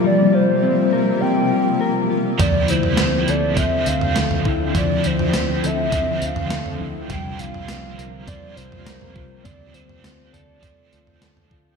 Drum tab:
TB |----------------|x-x-x-x-x-x-x---|x-x-x-x-x-x-x---|x-x-x-x-x-x-x---|
SD |----------------|----o-------o---|----o-------o---|----o-------o---|
FT |----------------|o--o----o--o-o--|o--o----o--o-o--|o--o----o--o-o--|
BD |----------------|o-------o-----o-|o-------o-------|o-------o-----o-|

TB |x-x-x-x-x-x-x---|
SD |----o-------o---|
FT |o--o--o-o--o-o--|
BD |o-------o-----o-|